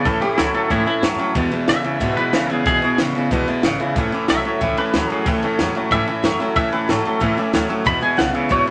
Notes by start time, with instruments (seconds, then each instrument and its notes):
0.05 upright bass A1, steel-string acoustic guitar A2 E3 A3 C#4 E4, clean electric guitar A2 E3 A4, kick, ride
0.21 clean electric guitar A2 E3 G4, steel-string acoustic guitar A3 C#4 E4, ride
0.38 upright bass C#2, clean electric guitar A2 F#3 E4, steel-string acoustic guitar E3 A3 C#4 E4, snare, ride
0.54 clean electric guitar A2 F#3 A4, steel-string acoustic guitar A3 C#4 E4, ride
0.70 upright bass G#2, clean electric guitar A2 E3 E4, steel-string acoustic guitar A2 E3 A3 C#4 E4, kick, ride
0.86 clean electric guitar A2 E3 E4, steel-string acoustic guitar A3 C#4 E4, muted upright bass stroke, ride
1.02 upright bass F#2, clean electric guitar A2 F#3, steel-string acoustic guitar E3 A3 C#4 E4, snare, ride
1.18 clean electric guitar A2 F#3, steel-string acoustic guitar A3 C#4 E4, muted upright bass stroke, ride
1.35 upright bass E2, steel-string acoustic guitar E2 B2 E3 G#3 B3 E4, clean electric guitar E2 B2, kick, ride
1.51 clean electric guitar E2 B2, steel-string acoustic guitar E3 G#3 B3 E4, ride
1.68 clean electric guitar E2 C#3 E5, upright bass B2, steel-string acoustic guitar E3 G#3 B3 E4, snare, ride
1.84 clean electric guitar E2 C#3, steel-string acoustic guitar E3 G#3 B3 E4, muted upright bass stroke, ride
2.00 steel-string acoustic guitar E2 B2 E3 G#3 B3 E4, clean electric guitar E2 B2, upright bass G#2, kick, ride
2.17 clean electric guitar E2 B2 B4, steel-string acoustic guitar E3 G#3 B3 E4, ride
2.33 upright bass C#2, clean electric guitar E2 C#3, steel-string acoustic guitar E3 G#3 B3 E4, snare, ride
2.50 clean electric guitar E2 C#3 G#4, steel-string acoustic guitar E3 G#3 B3 E4, ride
2.66 upright bass B1, clean electric guitar E2 B2 G#4, steel-string acoustic guitar E2 B2 E3 G#3 B3 E4, kick, ride
2.82 clean electric guitar E2 B2, steel-string acoustic guitar E3 G#3 B3 E4, ride
2.98 upright bass A1, clean electric guitar E2 C#3, steel-string acoustic guitar E3 G#3 B3 E4, snare, ride
3.14 clean electric guitar E2 C#3, steel-string acoustic guitar E3 G#3 B3 E4, muted upright bass stroke, ride
3.31 upright bass B1, steel-string acoustic guitar E2 B2 E3 G#3 B3 E4, clean electric guitar E2 B2, kick, ride
3.48 clean electric guitar E2 B2, steel-string acoustic guitar E3 G#3 B3 E4, ride
3.63 upright bass G#1, clean electric guitar E2 C#3, steel-string acoustic guitar E3 G#3 B3 E4, snare, ride
3.80 clean electric guitar E2 C#3, steel-string acoustic guitar E3 G#3 B3 E4, muted upright bass stroke, ride
3.96 upright bass A1, steel-string acoustic guitar A2 E3 A3 C#4 E4, clean electric guitar A2 E3, kick, ride
4.12 clean electric guitar A2 E3, steel-string acoustic guitar A3 C#4 E4, muted upright bass stroke, ride
4.28 upright bass B1, clean electric guitar A2 F#3 E5, steel-string acoustic guitar E3 A3 C#4 E4, snare, ride
4.44 clean electric guitar A2 F#3, steel-string acoustic guitar A3 C#4 E4, ride
4.61 upright bass C#2, steel-string acoustic guitar A2 E3 A3 C#4 E4, clean electric guitar A2 E3, kick, ride
4.77 clean electric guitar A2 E3 B4, steel-string acoustic guitar A3 C#4 E4, ride
4.93 upright bass D2, clean electric guitar A2 F#3, steel-string acoustic guitar E3 A3 C#4 E4, snare, ride
5.10 clean electric guitar A2 F#3 G#4, steel-string acoustic guitar A3 C#4 E4, ride
5.26 upright bass C#2, steel-string acoustic guitar A2 E3 A3 C#4 E4, clean electric guitar A2 E3 A4, kick, ride
5.42 clean electric guitar A2 E3, steel-string acoustic guitar A3 C#4 E4, muted upright bass stroke, ride
5.59 upright bass E2, clean electric guitar A2 F#3, steel-string acoustic guitar E3 A3 C#4 E4, snare, ride
5.75 clean electric guitar A2 F#3, steel-string acoustic guitar A3 C#4 E4, ride
5.91 upright bass G#2, steel-string acoustic guitar A2 E3 A3 C#4 E4, clean electric guitar A2 E3 E5, kick, ride
6.07 clean electric guitar A2 E3, steel-string acoustic guitar A3 C#4 E4, ride
6.23 upright bass F#2, clean electric guitar A2 F#3, steel-string acoustic guitar E3 A3 C#4 E4, snare, ride
6.40 clean electric guitar A2 F#3, steel-string acoustic guitar A3 C#4 E4, ride
6.56 steel-string acoustic guitar A2 E3 A3 C#4 E4, clean electric guitar A2 E3 E5, kick, ride
6.72 clean electric guitar A2 E3 B4, steel-string acoustic guitar A3 C#4 E4, muted upright bass stroke, ride
6.88 upright bass G#2, clean electric guitar A2 F#3 A4, steel-string acoustic guitar E3 A3 C#4 E4, snare, ride
7.05 clean electric guitar A2 F#3, steel-string acoustic guitar A3 C#4 E4, ride
7.20 steel-string acoustic guitar A2 E3 A3 C#4 E4, upright bass A2, clean electric guitar A2 E3, kick, ride
7.37 clean electric guitar A2 E3, steel-string acoustic guitar A3 C#4 E4, ride
7.53 upright bass D2, clean electric guitar A2 F#3, steel-string acoustic guitar E3 A3 C#4 E4, snare, ride
7.69 clean electric guitar A2 F#3, steel-string acoustic guitar A3 C#4 E4, ride
7.85 steel-string acoustic guitar E2 B2 E3 G#3 B3 E4, clean electric guitar E2 B2 B5, upright bass E2, kick, ride
8.01 clean electric guitar E2 B2 G#5, steel-string acoustic guitar E3 G#3 B3 E4, ride
8.16 upright bass B1, clean electric guitar E2 C#3 F#5, steel-string acoustic guitar E3 G#3 B3 E4, snare, ride
8.33 clean electric guitar E2 C#3 E5, steel-string acoustic guitar E3 G#3 B3 E4, ride
8.49 upright bass G#1, steel-string acoustic guitar E2 B2 E3 G#3 B3 E4, clean electric guitar E2 B2 C#5, kick, ride
8.66 steel-string acoustic guitar E3 G#3 B3 E4, clean electric guitar B4, ride